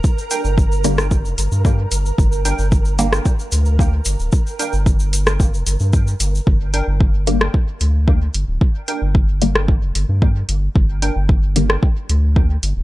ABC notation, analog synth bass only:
X:1
M:4/4
L:1/16
Q:1/4=112
K:Gm
V:1 name="Analog synth bass" clef=bass
z3 G,,,6 F,,, G,,, G,,3 G,,, z | G,,,3 G,,,4- G,,, z2 D,,4 G,,, D,,, | z3 G,,,6 F,,, G,,, G,,3 G,,, z | G,,,3 G,,,4- G,,, z2 D,,4 G,,, D,,, |
z3 G,,,6 F,,, G,,, G,,3 G,,, z | G,,,3 G,,,4- G,,, z2 D,,4 G,,, D,,, |]